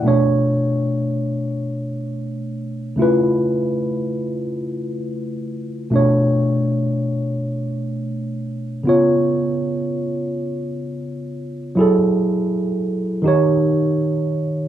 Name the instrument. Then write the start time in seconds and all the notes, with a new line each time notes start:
tine electric piano
0.02 B2 A3
0.06 D4 C#5
2.96 C#3 A3 E4
3.00 F4 B4
5.90 B2 A3 D4
5.96 C#5
8.83 C#3 B3 F4
8.89 C#5
11.75 F#3 E4 G#4
11.81 A4
13.22 D#3 D#4 G4
13.28 C#5